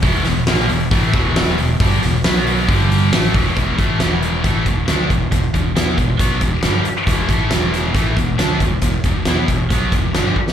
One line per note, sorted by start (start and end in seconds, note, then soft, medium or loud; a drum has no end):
0.02 0.24 E1 medium
0.02 0.23 E2 medium
0.02 0.24 B2 medium
0.02 0.25 E3 loud
0.02 kick loud
0.02 open hi-hat medium
0.24 0.46 E1 medium
0.24 0.43 E2 medium
0.24 0.43 B2 medium
0.24 snare soft
0.24 open hi-hat medium
0.47 0.68 A#1 medium
0.47 0.69 A#2 loud
0.47 0.69 F3 loud
0.47 0.70 A#3 loud
0.47 snare loud
0.47 open hi-hat medium
0.69 0.90 E1 medium
0.69 0.87 E2 medium
0.69 0.87 B2 medium
0.69 open hi-hat medium
0.91 1.13 A1 medium
0.91 1.13 A2 medium
0.91 1.13 E3 loud
0.91 1.13 A3 loud
0.91 kick loud
0.91 open hi-hat medium
1.14 1.55 E1 medium
1.14 1.57 E2 medium
1.14 1.57 B2 loud
1.14 1.58 E3 medium
1.14 kick loud
1.14 open hi-hat medium
1.36 snare loud
1.36 open hi-hat medium
1.58 1.79 E1 medium
1.58 1.76 E2 medium
1.58 1.76 B2 medium
1.58 open hi-hat medium
1.80 2.01 G1 medium
1.80 2.02 G2 loud
1.80 2.02 D3 loud
1.80 2.02 G3 loud
1.80 kick loud
1.80 open hi-hat medium
2.02 2.23 E1 medium
2.02 2.20 E2 medium
2.02 2.20 B2 medium
2.02 snare soft
2.02 open hi-hat medium
2.24 2.66 B1 medium
2.24 2.68 B2 medium
2.24 2.68 F#3 medium
2.24 2.68 B3 medium
2.24 snare loud
2.24 open hi-hat medium
2.46 open hi-hat medium
2.68 3.09 G1 loud
2.68 3.11 G2 medium
2.68 3.11 D3 medium
2.68 3.12 G3 loud
2.68 kick loud
2.68 open hi-hat medium
2.91 open hi-hat medium
3.12 3.33 A1 medium
3.12 3.33 A2 medium
3.12 3.34 E3 medium
3.12 3.34 A3 medium
3.12 snare loud
3.12 open hi-hat medium
3.34 3.55 E1 medium
3.34 3.55 E2 medium
3.34 3.56 B2 loud
3.34 3.56 E3 loud
3.34 kick medium
3.34 open hi-hat medium
3.57 3.77 E1 medium
3.57 3.78 E2 medium
3.57 3.78 B2 medium
3.57 3.77 E3 medium
3.57 kick medium
3.57 closed hi-hat medium
3.78 3.98 A1 medium
3.78 3.99 A2 medium
3.78 3.99 E3 medium
3.78 4.00 A3 medium
3.78 kick medium
3.78 closed hi-hat medium
3.99 4.40 E1 medium
3.99 4.43 E2 medium
3.99 4.44 B2 medium
3.99 4.44 E3 loud
3.99 snare loud
3.99 closed hi-hat medium
4.22 closed hi-hat medium
4.44 4.65 A1 medium
4.44 4.65 A2 medium
4.44 4.66 E3 medium
4.44 4.66 A3 medium
4.44 kick medium
4.44 closed hi-hat medium
4.66 4.86 E1 medium
4.66 4.84 E2 medium
4.66 4.84 B2 medium
4.66 kick medium
4.66 closed hi-hat medium
4.88 5.08 D2 medium
4.88 5.09 D3 medium
4.88 5.10 A3 medium
4.88 5.10 D4 medium
4.88 snare loud
4.88 closed hi-hat medium
5.10 5.31 E1 medium
5.10 5.28 E2 medium
5.10 5.28 B2 medium
5.10 kick medium
5.10 closed hi-hat medium
5.32 5.52 E1 medium
5.32 5.49 E2 medium
5.32 5.49 B2 medium
5.32 kick medium
5.32 closed hi-hat medium
5.54 5.75 E1 medium
5.54 5.71 E2 medium
5.54 5.72 B2 medium
5.54 kick medium
5.54 closed hi-hat medium
5.76 5.96 E2 medium
5.76 5.97 E3 medium
5.76 5.97 B3 medium
5.76 5.97 E4 medium
5.76 snare loud
5.76 closed hi-hat medium
5.98 6.18 E1 medium
5.98 6.15 E2 medium
5.98 6.15 B2 medium
5.98 kick medium
5.98 closed hi-hat medium
6.19 6.40 B1 medium
6.19 6.41 B2 medium
6.19 6.41 F#3 medium
6.19 6.41 B3 medium
6.19 kick loud
6.19 closed hi-hat medium
6.41 6.62 E1 medium
6.41 6.59 E2 medium
6.41 6.59 B2 medium
6.41 kick medium
6.41 closed hi-hat medium
6.63 6.84 G1 medium
6.63 6.84 G2 medium
6.63 6.85 D3 medium
6.63 6.85 G3 medium
6.63 snare loud
6.63 closed hi-hat medium
6.85 muted distorted electric guitar stroke medium
6.85 muted fingered electric bass stroke soft
6.85 closed hi-hat medium
7.07 7.27 E1 medium
7.07 7.28 E2 medium
7.07 7.29 B2 medium
7.07 7.28 E3 loud
7.07 kick medium
7.07 closed hi-hat medium
7.29 7.49 A1 medium
7.29 7.49 A2 medium
7.29 7.49 E3 medium
7.29 7.51 A3 loud
7.29 kick medium
7.29 closed hi-hat medium
7.49 7.92 E1 medium
7.49 7.93 E2 medium
7.49 7.94 B2 medium
7.49 7.93 E3 medium
7.49 snare loud
7.49 closed hi-hat medium
7.74 snare soft
7.74 closed hi-hat medium
7.94 8.15 A1 medium
7.94 8.16 A2 medium
7.94 8.16 E3 medium
7.94 8.16 A3 medium
7.94 kick loud
7.94 closed hi-hat medium
8.16 8.37 E1 medium
8.16 8.34 E2 medium
8.16 8.34 B2 medium
8.16 kick medium
8.16 closed hi-hat medium
8.38 8.59 D2 medium
8.38 8.60 D3 medium
8.38 8.60 A3 medium
8.38 8.60 D4 medium
8.38 snare loud
8.38 closed hi-hat medium
8.60 8.81 E1 medium
8.60 8.78 E2 medium
8.60 8.78 B2 medium
8.60 kick medium
8.60 closed hi-hat medium
8.81 9.03 E1 medium
8.81 9.00 E2 medium
8.81 9.00 B2 medium
8.81 kick medium
8.81 closed hi-hat medium
9.04 9.25 E1 medium
9.04 9.23 E2 medium
9.04 9.23 B2 medium
9.04 kick medium
9.04 closed hi-hat medium
9.25 9.47 E2 medium
9.25 9.48 E3 medium
9.25 9.48 B3 medium
9.25 9.49 E4 medium
9.25 snare medium
9.25 closed hi-hat medium
9.48 9.69 E1 medium
9.48 9.67 E2 medium
9.48 9.67 B2 medium
9.48 kick medium
9.48 closed hi-hat medium
9.70 9.91 B1 medium
9.70 9.92 B2 medium
9.70 9.92 F#3 medium
9.70 9.93 B3 medium
9.70 kick medium
9.70 closed hi-hat medium
9.92 10.13 E1 medium
9.92 10.11 E2 medium
9.92 10.11 B2 medium
9.92 kick medium
9.92 closed hi-hat medium
10.14 10.36 G1 medium
10.14 10.36 G2 medium
10.14 10.36 D3 medium
10.14 10.36 G3 medium
10.14 snare medium
10.14 closed hi-hat medium
10.36 muted fingered electric bass stroke soft
10.36 muted distorted electric guitar stroke medium
10.36 kick medium
10.48 snare medium